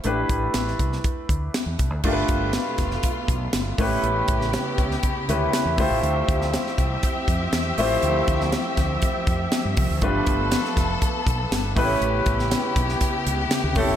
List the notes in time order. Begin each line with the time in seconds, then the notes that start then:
0.04 A1 A3 D4 E4 G4 B4, closed hi-hat
0.29 A1, kick, closed hi-hat
0.54 A1, snare, closed hi-hat
0.68 snare
0.79 C2, kick, closed hi-hat
0.93 snare
1.04 kick, closed hi-hat
1.29 D2, kick, closed hi-hat
1.54 snare, closed hi-hat
1.66 E2
1.79 C2, kick, closed hi-hat
1.90 D2
2.03 G1 B2 A3 D4 F4 G4 A#4, kick, crash
2.12 B4
2.28 G1, kick, closed hi-hat
2.53 snare, closed hi-hat
2.78 F1, kick, snare, closed hi-hat
2.91 snare
3.03 kick, closed hi-hat
3.28 B1, kick, closed hi-hat
3.53 G1, snare, closed hi-hat
3.78 A1 C#3 A3 B3 C#4 E4 G4 B4, kick, open hi-hat
4.03 A1, closed hi-hat
4.28 A1, kick, closed hi-hat
4.42 snare
4.53 snare, closed hi-hat
4.78 C#2, kick, closed hi-hat
4.91 snare
5.03 kick, closed hi-hat
5.28 D2 A3 C#4 E4 G4 B4, closed hi-hat
5.53 snare, closed hi-hat
5.65 E2
5.78 D2 F3 A3 C4 E4 F4 G4 C5 E5, kick, open hi-hat
5.91 A1
6.03 D2, closed hi-hat
6.28 D2, kick, closed hi-hat
6.42 snare
6.54 snare, closed hi-hat
6.67 snare
6.78 C2, kick, closed hi-hat
7.03 kick, closed hi-hat
7.28 F2, kick, closed hi-hat
7.53 E2, snare, closed hi-hat
7.78 A1 A3 E4 F4 G4 C5, open hi-hat
8.03 D2, closed hi-hat
8.28 D2, kick, closed hi-hat
8.41 snare
8.52 snare, closed hi-hat
8.77 D2, kick, snare, closed hi-hat
9.02 kick, closed hi-hat
9.27 F2, kick, closed hi-hat
9.52 snare, closed hi-hat
9.65 G2
9.77 C2, kick, open hi-hat
9.90 D2
10.01 G1 A3 B3 D4 F4 G4 A4 B4, kick, closed hi-hat
10.26 G1, kick, closed hi-hat
10.52 snare, closed hi-hat
10.65 snare
10.77 F1, kick, snare, closed hi-hat
11.02 kick, closed hi-hat
11.27 B1, kick, closed hi-hat
11.51 G1, snare, closed hi-hat
11.76 A1 C#3 A3 B3 E4 G4 B4, kick, open hi-hat
11.83 C#4
12.01 A1, closed hi-hat
12.26 A1, kick, closed hi-hat
12.39 snare
12.51 snare, closed hi-hat
12.76 B1, kick, closed hi-hat
12.89 snare
13.01 kick, closed hi-hat
13.27 C#2, closed hi-hat
13.51 snare, closed hi-hat
13.64 D2
13.75 F1 A3 C#4 E4 G4 A4, kick, open hi-hat
13.88 E1